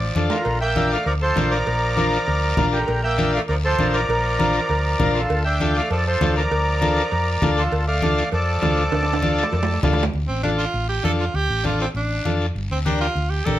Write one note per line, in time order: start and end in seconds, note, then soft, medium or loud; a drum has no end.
0.00 0.28 F3 medium
0.00 0.28 D5 medium
0.15 0.28 F2 medium
0.15 0.37 D4 medium
0.15 0.37 F4 medium
0.15 0.37 A4 medium
0.15 high conga medium
0.15 short guiro medium
0.30 0.59 D3 medium
0.30 0.59 F4 medium
0.30 0.58 A#4 medium
0.30 low timbale medium
0.30 short guiro medium
0.45 0.94 A#1 medium
0.45 cowbell medium
0.45 high conga soft
0.45 long guiro medium
0.61 0.90 A#3 medium
0.61 0.89 E5 medium
0.61 0.92 G5 loud
0.76 0.97 D4 medium
0.76 0.97 F4 medium
0.76 0.98 A#4 medium
0.76 high conga medium
0.76 short guiro medium
0.91 1.06 A3 medium
0.91 1.05 D5 medium
0.91 1.06 F5 medium
0.91 short guiro medium
1.06 1.30 D2 medium
1.06 1.14 F3 medium
1.06 1.13 A#4 medium
1.06 1.13 D5 loud
1.06 cowbell medium
1.06 high conga soft
1.06 long guiro medium
1.22 1.51 F3 medium
1.22 1.50 A4 medium
1.22 1.53 C5 loud
1.36 1.61 A#1 medium
1.36 1.57 D4 medium
1.36 1.58 F4 medium
1.36 1.58 A#4 medium
1.36 high conga medium
1.36 low timbale medium
1.36 short guiro medium
1.51 2.70 F3 medium
1.51 2.69 A#4 medium
1.51 2.76 D5 loud
1.51 short guiro medium
1.67 2.16 A#1 medium
1.67 cowbell medium
1.67 high conga soft
1.67 long guiro medium
1.96 2.18 D4 medium
1.96 2.18 F4 medium
1.96 2.19 A#4 medium
1.96 high conga medium
1.96 short guiro medium
2.12 short guiro medium
2.27 2.52 D2 medium
2.27 cowbell medium
2.27 high conga soft
2.27 long guiro medium
2.57 2.82 A#1 medium
2.57 2.79 D4 medium
2.57 2.79 F4 medium
2.57 2.79 A#4 medium
2.57 high conga medium
2.57 low conga medium
2.57 low timbale medium
2.57 short guiro medium
2.73 3.03 D3 medium
2.73 3.01 G4 medium
2.73 3.04 A#4 medium
2.73 short guiro medium
2.88 3.37 A#1 medium
2.88 cowbell medium
2.88 high conga soft
2.88 long guiro medium
3.04 3.32 A#3 medium
3.04 3.32 E5 medium
3.04 3.32 G5 loud
3.18 3.39 D4 medium
3.18 3.39 F4 medium
3.18 3.40 A#4 medium
3.18 high conga medium
3.18 short guiro medium
3.33 3.42 A3 medium
3.33 3.41 D5 medium
3.33 3.41 F5 loud
3.33 short guiro medium
3.48 3.73 D2 loud
3.48 3.57 F3 medium
3.48 3.55 A#4 medium
3.48 3.55 D5 medium
3.48 cowbell medium
3.48 high conga soft
3.48 long guiro medium
3.64 3.93 F3 medium
3.64 3.92 A4 medium
3.64 3.96 C5 loud
3.78 4.03 A#1 medium
3.78 4.00 D4 medium
3.78 4.01 F4 medium
3.78 4.01 A#4 medium
3.78 high conga medium
3.78 short guiro medium
3.93 5.12 F3 medium
3.93 5.11 A#4 medium
3.93 5.19 D5 loud
3.93 short guiro medium
4.08 4.57 A#1 medium
4.08 cowbell medium
4.08 high conga soft
4.08 long guiro medium
4.39 4.60 D4 medium
4.39 4.60 F4 medium
4.39 4.61 A#4 medium
4.39 high conga medium
4.39 short guiro medium
4.53 short guiro medium
4.69 4.94 D2 medium
4.69 cowbell medium
4.69 high conga soft
4.69 long guiro medium
4.99 5.24 A#1 medium
4.99 5.21 D4 medium
4.99 5.21 F4 medium
4.99 5.21 A#4 loud
4.99 high conga medium
4.99 low conga medium
4.99 short guiro medium
5.15 5.44 D3 medium
5.15 5.43 F4 medium
5.15 5.43 A4 medium
5.15 short guiro medium
5.30 5.78 D2 medium
5.30 cowbell loud
5.30 high conga soft
5.30 long guiro medium
5.44 5.74 D4 medium
5.44 5.73 E5 medium
5.44 5.76 G5 loud
5.60 5.82 D4 medium
5.60 5.82 F4 medium
5.60 5.82 A4 medium
5.60 high conga medium
5.60 short guiro medium
5.75 5.91 A3 medium
5.75 5.90 D5 medium
5.75 5.91 F5 medium
5.75 short guiro medium
5.90 6.15 F2 medium
5.90 6.05 F3 medium
5.90 6.05 A4 medium
5.90 6.07 D5 medium
5.90 cowbell medium
5.90 high conga soft
5.90 long guiro medium
6.07 6.34 F3 medium
6.07 6.34 A4 medium
6.07 6.35 C5 medium
6.21 6.45 D2 medium
6.21 6.42 D4 medium
6.21 6.42 F4 medium
6.21 6.43 A4 medium
6.21 high conga medium
6.21 low timbale medium
6.21 short guiro medium
6.36 7.41 F3 medium
6.36 7.53 A#4 medium
6.36 7.61 D5 loud
6.36 short guiro medium
6.51 7.00 D2 medium
6.51 cowbell loud
6.51 high conga soft
6.51 long guiro medium
6.81 7.02 D4 medium
6.81 7.03 F4 medium
6.81 7.03 A4 medium
6.81 high conga medium
6.81 short guiro medium
6.97 short guiro medium
7.12 7.36 F2 medium
7.12 cowbell medium
7.12 high conga soft
7.12 long guiro medium
7.41 7.66 D2 loud
7.41 7.63 D4 medium
7.41 7.63 F4 medium
7.41 7.63 A4 loud
7.41 high conga medium
7.41 low conga medium
7.41 short guiro medium
7.57 7.85 D3 medium
7.57 7.85 F4 medium
7.57 7.85 A4 medium
7.57 short guiro medium
7.72 8.20 D2 medium
7.72 cowbell medium
7.72 high conga soft
7.72 long guiro medium
7.87 8.29 A3 medium
7.87 8.29 D5 medium
7.87 8.30 F5 loud
8.01 8.24 D4 medium
8.01 8.24 F4 medium
8.01 8.24 A4 medium
8.01 high conga medium
8.01 short guiro medium
8.17 short guiro medium
8.31 8.56 F2 medium
8.31 9.80 F3 medium
8.31 9.80 A4 medium
8.31 9.80 D5 loud
8.31 cowbell medium
8.31 high conga soft
8.31 long guiro medium
8.61 8.86 D2 medium
8.61 8.83 D4 medium
8.61 8.83 F4 medium
8.61 8.84 A4 medium
8.61 high conga medium
8.61 low timbale medium
8.61 short guiro medium
8.76 short guiro medium
8.92 9.40 D2 medium
8.92 cowbell medium
8.92 high conga soft
8.92 high timbale medium
8.92 long guiro medium
9.03 high timbale medium
9.13 high timbale loud
9.22 9.44 D4 medium
9.22 9.44 F4 medium
9.22 9.44 A4 medium
9.22 high conga medium
9.22 short guiro medium
9.37 short guiro medium
9.43 low timbale medium
9.52 9.77 F2 loud
9.52 cowbell medium
9.52 high conga soft
9.52 low timbale medium
9.52 long guiro medium
9.63 low timbale medium
9.73 low timbale medium
9.83 10.07 D2 medium
9.83 10.05 D4 medium
9.83 10.05 F4 medium
9.83 10.05 A4 loud
9.83 high conga medium
9.83 low conga medium
9.83 low timbale medium
9.83 short guiro medium
9.93 low timbale medium
9.98 short guiro medium
10.03 low timbale medium
10.14 10.26 D2 medium
10.14 high conga soft
10.14 long guiro medium
10.28 10.65 A1 medium
10.28 10.42 C4 medium
10.43 10.50 D4 medium
10.43 10.65 D4 medium
10.43 10.65 F4 medium
10.43 10.65 A4 medium
10.43 high conga medium
10.43 short guiro medium
10.58 10.86 F4 medium
10.58 short guiro medium
10.74 10.98 A1 medium
10.74 high conga soft
10.74 long guiro medium
10.89 11.03 G4 medium
11.03 11.28 F2 medium
11.03 11.25 D4 medium
11.03 11.25 F4 medium
11.03 11.25 A4 medium
11.03 11.12 A4 medium
11.03 high conga medium
11.03 short guiro medium
11.19 11.37 F4 medium
11.19 short guiro medium
11.34 11.46 D2 medium
11.34 11.65 G4 loud
11.34 high conga soft
11.34 long guiro medium
11.49 11.86 A1 medium
11.64 11.85 D4 medium
11.64 11.86 F4 medium
11.64 11.80 F4 medium
11.64 11.86 A4 medium
11.64 high conga medium
11.64 short guiro medium
11.79 11.88 C4 medium
11.79 short guiro medium
11.94 12.19 A1 medium
11.94 12.38 D4 medium
11.94 high conga soft
11.94 long guiro medium
12.25 12.49 F2 medium
12.25 12.46 D4 medium
12.25 12.46 F4 medium
12.25 12.47 A4 medium
12.25 high conga medium
12.25 short guiro medium
12.40 short guiro medium
12.55 12.67 G1 medium
12.55 high conga soft
12.55 long guiro medium
12.70 13.07 D2 medium
12.70 12.78 C4 medium
12.85 13.07 D4 medium
12.85 13.00 D4 medium
12.85 13.07 G4 medium
12.85 13.07 A#4 medium
12.85 high conga medium
12.85 short guiro medium
13.01 13.32 F4 loud
13.01 short guiro medium
13.15 13.40 D2 medium
13.15 high conga soft
13.15 long guiro medium
13.30 13.47 G4 medium
13.45 13.59 A#1 medium
13.45 13.59 D4 medium
13.45 13.59 G4 medium
13.45 13.59 A4 loud
13.45 13.59 A#4 medium
13.45 high conga medium
13.45 short guiro medium